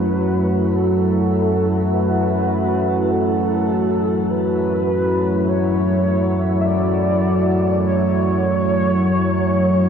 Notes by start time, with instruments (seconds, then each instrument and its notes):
Already playing: synth drone F#2 F#3, ambient pad A3 E4 F#4, soft synth lead B4
0.76 soft synth lead A4
1.94 soft synth lead B4
3.11 soft synth lead A4
4.31 soft synth lead B4
5.49 ambient pad F#3, soft synth lead C#5
6.61 soft synth lead E5
6.66 soft synth lead D5
7.83 soft synth lead C#5